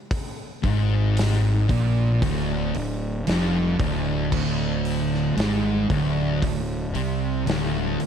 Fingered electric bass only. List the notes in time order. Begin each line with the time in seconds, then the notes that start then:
0.64 G#1
1.69 A#1
2.22 D1
2.75 D1
3.27 F1
3.80 D1
4.33 D1
5.36 G#1
5.90 D1
6.43 D1
6.95 C2
7.47 D1